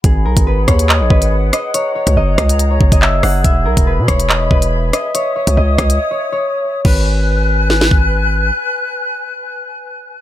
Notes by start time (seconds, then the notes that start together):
0.04 G#1 G#4 F#5 B5, kick, closed hi-hat
0.25 B1 A#4
0.37 G#1, kick, closed hi-hat
0.47 B4
0.68 D#2 C#5, kick, cross-stick, closed hi-hat
0.79 closed hi-hat
0.89 D#5, clap
1.00 A#1
1.10 G#1 B4, kick
1.22 closed hi-hat
1.53 D#5, cross-stick, closed hi-hat
1.74 G#4 C#5 A#5, closed hi-hat
1.95 C#5
2.07 C#2, kick, closed hi-hat
2.17 F#1 D#5
2.38 C#2 D#5, kick, cross-stick, closed hi-hat
2.49 closed hi-hat
2.59 closed hi-hat
2.71 C#5
2.81 F#1, kick
2.92 F#1 D#5, kick, closed hi-hat
3.02 E5, clap
3.23 F#1 F#5, cross-stick, open hi-hat
3.44 E1 E5 B5, kick, closed hi-hat
3.65 B1 A#4
3.77 E1, kick, closed hi-hat
3.87 B4
3.98 B2
4.08 E1 C#5, kick, cross-stick, closed hi-hat
4.20 closed hi-hat
4.29 D#5, clap
4.51 E1 B4, kick
4.62 closed hi-hat
4.93 D#5, cross-stick, closed hi-hat
5.15 C#5 D#6, closed hi-hat
5.36 C#5
5.47 C#2, kick, closed hi-hat
5.57 C#2 D#5
5.78 C#2 D#5, kick, cross-stick, closed hi-hat
5.90 closed hi-hat
6.11 C#5
6.32 C#5
6.85 G#1 B4 G#5 F#6, kick, crash
7.70 snare
7.81 snare
7.91 kick